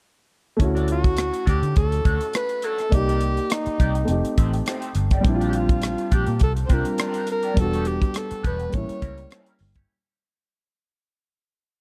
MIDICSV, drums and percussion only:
0, 0, Header, 1, 2, 480
1, 0, Start_track
1, 0, Tempo, 581395
1, 492, Time_signature, 4, 2, 24, 8
1, 9744, End_track
2, 0, Start_track
2, 0, Title_t, "Drums"
2, 493, Note_on_c, 9, 36, 86
2, 496, Note_on_c, 9, 42, 70
2, 576, Note_off_c, 9, 36, 0
2, 578, Note_off_c, 9, 42, 0
2, 633, Note_on_c, 9, 42, 46
2, 715, Note_off_c, 9, 42, 0
2, 725, Note_on_c, 9, 42, 66
2, 808, Note_off_c, 9, 42, 0
2, 861, Note_on_c, 9, 36, 80
2, 863, Note_on_c, 9, 42, 43
2, 944, Note_off_c, 9, 36, 0
2, 946, Note_off_c, 9, 42, 0
2, 963, Note_on_c, 9, 42, 81
2, 978, Note_on_c, 9, 37, 87
2, 1045, Note_off_c, 9, 42, 0
2, 1060, Note_off_c, 9, 37, 0
2, 1103, Note_on_c, 9, 42, 44
2, 1185, Note_off_c, 9, 42, 0
2, 1216, Note_on_c, 9, 36, 63
2, 1216, Note_on_c, 9, 42, 56
2, 1222, Note_on_c, 9, 37, 32
2, 1298, Note_off_c, 9, 36, 0
2, 1298, Note_off_c, 9, 42, 0
2, 1305, Note_off_c, 9, 37, 0
2, 1345, Note_on_c, 9, 42, 41
2, 1428, Note_off_c, 9, 42, 0
2, 1451, Note_on_c, 9, 42, 70
2, 1459, Note_on_c, 9, 36, 85
2, 1534, Note_off_c, 9, 42, 0
2, 1541, Note_off_c, 9, 36, 0
2, 1586, Note_on_c, 9, 42, 50
2, 1669, Note_off_c, 9, 42, 0
2, 1694, Note_on_c, 9, 36, 82
2, 1694, Note_on_c, 9, 42, 58
2, 1776, Note_off_c, 9, 42, 0
2, 1777, Note_off_c, 9, 36, 0
2, 1822, Note_on_c, 9, 42, 47
2, 1904, Note_off_c, 9, 42, 0
2, 1927, Note_on_c, 9, 42, 79
2, 1940, Note_on_c, 9, 37, 95
2, 2010, Note_off_c, 9, 42, 0
2, 2023, Note_off_c, 9, 37, 0
2, 2056, Note_on_c, 9, 42, 47
2, 2138, Note_off_c, 9, 42, 0
2, 2165, Note_on_c, 9, 42, 81
2, 2248, Note_off_c, 9, 42, 0
2, 2299, Note_on_c, 9, 42, 41
2, 2312, Note_on_c, 9, 37, 27
2, 2381, Note_off_c, 9, 42, 0
2, 2394, Note_off_c, 9, 37, 0
2, 2413, Note_on_c, 9, 36, 89
2, 2413, Note_on_c, 9, 42, 83
2, 2496, Note_off_c, 9, 36, 0
2, 2496, Note_off_c, 9, 42, 0
2, 2552, Note_on_c, 9, 42, 47
2, 2635, Note_off_c, 9, 42, 0
2, 2646, Note_on_c, 9, 42, 70
2, 2729, Note_off_c, 9, 42, 0
2, 2783, Note_on_c, 9, 42, 43
2, 2865, Note_off_c, 9, 42, 0
2, 2889, Note_on_c, 9, 42, 94
2, 2905, Note_on_c, 9, 37, 100
2, 2972, Note_off_c, 9, 42, 0
2, 2987, Note_off_c, 9, 37, 0
2, 3020, Note_on_c, 9, 42, 42
2, 3103, Note_off_c, 9, 42, 0
2, 3136, Note_on_c, 9, 36, 69
2, 3136, Note_on_c, 9, 42, 57
2, 3218, Note_off_c, 9, 36, 0
2, 3218, Note_off_c, 9, 42, 0
2, 3262, Note_on_c, 9, 42, 40
2, 3345, Note_off_c, 9, 42, 0
2, 3366, Note_on_c, 9, 42, 65
2, 3449, Note_off_c, 9, 42, 0
2, 3507, Note_on_c, 9, 42, 45
2, 3589, Note_off_c, 9, 42, 0
2, 3613, Note_on_c, 9, 42, 65
2, 3614, Note_on_c, 9, 36, 75
2, 3696, Note_off_c, 9, 42, 0
2, 3697, Note_off_c, 9, 36, 0
2, 3743, Note_on_c, 9, 42, 45
2, 3826, Note_off_c, 9, 42, 0
2, 3848, Note_on_c, 9, 42, 74
2, 3861, Note_on_c, 9, 37, 98
2, 3931, Note_off_c, 9, 42, 0
2, 3944, Note_off_c, 9, 37, 0
2, 3978, Note_on_c, 9, 42, 52
2, 4061, Note_off_c, 9, 42, 0
2, 4084, Note_on_c, 9, 42, 71
2, 4166, Note_off_c, 9, 42, 0
2, 4216, Note_on_c, 9, 42, 44
2, 4220, Note_on_c, 9, 36, 74
2, 4229, Note_on_c, 9, 37, 29
2, 4298, Note_off_c, 9, 42, 0
2, 4303, Note_off_c, 9, 36, 0
2, 4312, Note_off_c, 9, 37, 0
2, 4329, Note_on_c, 9, 42, 78
2, 4331, Note_on_c, 9, 36, 102
2, 4412, Note_off_c, 9, 42, 0
2, 4413, Note_off_c, 9, 36, 0
2, 4469, Note_on_c, 9, 42, 50
2, 4552, Note_off_c, 9, 42, 0
2, 4565, Note_on_c, 9, 42, 64
2, 4648, Note_off_c, 9, 42, 0
2, 4699, Note_on_c, 9, 36, 80
2, 4699, Note_on_c, 9, 42, 48
2, 4782, Note_off_c, 9, 36, 0
2, 4782, Note_off_c, 9, 42, 0
2, 4801, Note_on_c, 9, 42, 81
2, 4817, Note_on_c, 9, 37, 86
2, 4884, Note_off_c, 9, 42, 0
2, 4899, Note_off_c, 9, 37, 0
2, 4939, Note_on_c, 9, 42, 43
2, 5022, Note_off_c, 9, 42, 0
2, 5049, Note_on_c, 9, 42, 62
2, 5052, Note_on_c, 9, 36, 70
2, 5056, Note_on_c, 9, 37, 33
2, 5132, Note_off_c, 9, 42, 0
2, 5134, Note_off_c, 9, 36, 0
2, 5138, Note_off_c, 9, 37, 0
2, 5172, Note_on_c, 9, 42, 40
2, 5255, Note_off_c, 9, 42, 0
2, 5280, Note_on_c, 9, 42, 67
2, 5293, Note_on_c, 9, 36, 75
2, 5362, Note_off_c, 9, 42, 0
2, 5376, Note_off_c, 9, 36, 0
2, 5420, Note_on_c, 9, 42, 47
2, 5503, Note_off_c, 9, 42, 0
2, 5526, Note_on_c, 9, 42, 67
2, 5530, Note_on_c, 9, 36, 79
2, 5609, Note_off_c, 9, 42, 0
2, 5612, Note_off_c, 9, 36, 0
2, 5655, Note_on_c, 9, 42, 45
2, 5738, Note_off_c, 9, 42, 0
2, 5763, Note_on_c, 9, 42, 81
2, 5776, Note_on_c, 9, 37, 102
2, 5846, Note_off_c, 9, 42, 0
2, 5859, Note_off_c, 9, 37, 0
2, 5893, Note_on_c, 9, 42, 52
2, 5976, Note_off_c, 9, 42, 0
2, 6000, Note_on_c, 9, 42, 70
2, 6083, Note_off_c, 9, 42, 0
2, 6131, Note_on_c, 9, 42, 41
2, 6214, Note_off_c, 9, 42, 0
2, 6249, Note_on_c, 9, 36, 89
2, 6250, Note_on_c, 9, 42, 80
2, 6332, Note_off_c, 9, 36, 0
2, 6333, Note_off_c, 9, 42, 0
2, 6385, Note_on_c, 9, 42, 51
2, 6467, Note_off_c, 9, 42, 0
2, 6481, Note_on_c, 9, 42, 61
2, 6564, Note_off_c, 9, 42, 0
2, 6618, Note_on_c, 9, 36, 77
2, 6620, Note_on_c, 9, 42, 43
2, 6700, Note_off_c, 9, 36, 0
2, 6703, Note_off_c, 9, 42, 0
2, 6721, Note_on_c, 9, 42, 98
2, 6737, Note_on_c, 9, 37, 85
2, 6804, Note_off_c, 9, 42, 0
2, 6819, Note_off_c, 9, 37, 0
2, 6859, Note_on_c, 9, 42, 52
2, 6941, Note_off_c, 9, 42, 0
2, 6971, Note_on_c, 9, 42, 55
2, 6972, Note_on_c, 9, 36, 77
2, 7054, Note_off_c, 9, 36, 0
2, 7054, Note_off_c, 9, 42, 0
2, 7096, Note_on_c, 9, 42, 39
2, 7179, Note_off_c, 9, 42, 0
2, 7204, Note_on_c, 9, 42, 80
2, 7214, Note_on_c, 9, 36, 82
2, 7286, Note_off_c, 9, 42, 0
2, 7296, Note_off_c, 9, 36, 0
2, 7341, Note_on_c, 9, 42, 48
2, 7423, Note_off_c, 9, 42, 0
2, 7447, Note_on_c, 9, 42, 64
2, 7449, Note_on_c, 9, 36, 80
2, 7530, Note_off_c, 9, 42, 0
2, 7532, Note_off_c, 9, 36, 0
2, 7576, Note_on_c, 9, 42, 47
2, 7658, Note_off_c, 9, 42, 0
2, 7683, Note_on_c, 9, 42, 83
2, 7696, Note_on_c, 9, 37, 107
2, 7765, Note_off_c, 9, 42, 0
2, 7778, Note_off_c, 9, 37, 0
2, 7813, Note_on_c, 9, 42, 51
2, 7895, Note_off_c, 9, 42, 0
2, 7915, Note_on_c, 9, 46, 74
2, 7998, Note_off_c, 9, 46, 0
2, 8046, Note_on_c, 9, 42, 47
2, 8055, Note_on_c, 9, 36, 69
2, 8060, Note_on_c, 9, 37, 28
2, 8129, Note_off_c, 9, 42, 0
2, 8137, Note_off_c, 9, 36, 0
2, 8142, Note_off_c, 9, 37, 0
2, 9744, End_track
0, 0, End_of_file